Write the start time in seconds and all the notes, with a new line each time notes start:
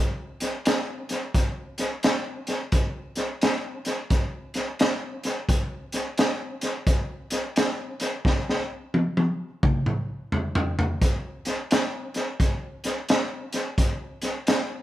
0.40 snare, closed hi-hat
0.65 snare, closed hi-hat
1.09 snare, closed hi-hat
1.34 kick, snare, closed hi-hat
1.78 snare, closed hi-hat
2.03 snare, closed hi-hat
2.47 snare, closed hi-hat
2.72 kick, snare, closed hi-hat
3.16 snare, closed hi-hat
3.41 snare, closed hi-hat
3.85 snare, closed hi-hat
4.10 kick, snare, closed hi-hat
4.54 snare, closed hi-hat
4.79 snare, closed hi-hat
5.23 snare, closed hi-hat
5.49 kick, snare, closed hi-hat
5.92 snare, closed hi-hat
6.17 snare, closed hi-hat
6.61 snare, closed hi-hat
6.87 kick, snare, closed hi-hat
7.30 snare, closed hi-hat
7.56 snare, closed hi-hat
8.00 snare, closed hi-hat
8.25 kick, snare
8.49 snare
8.94 high tom
9.17 high tom
9.63 kick, mid tom
9.86 mid tom
10.32 floor tom
10.55 floor tom
10.79 floor tom
11.02 kick, snare, closed hi-hat
11.45 snare, closed hi-hat
11.71 snare, closed hi-hat
12.14 snare, closed hi-hat
12.40 kick, snare, closed hi-hat
12.84 snare, closed hi-hat
13.09 snare, closed hi-hat
13.53 snare, closed hi-hat
13.78 kick, snare, closed hi-hat
14.22 snare, closed hi-hat
14.47 snare, closed hi-hat